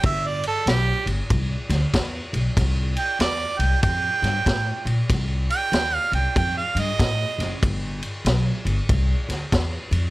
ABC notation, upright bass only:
X:1
M:4/4
L:1/8
Q:"Swing" 1/4=95
K:Gmix
V:1 name="Upright bass" clef=bass
G,,,2 B,,, G,,, C,, D,, E,, B,,, | C,,2 E,, C,, F,, G,, A,, _B,, | C,,2 _E,, C,, F,, G,, A,, ^F,,, | G,,,2 B,,, G,,, C,, D,, E,, F,, |]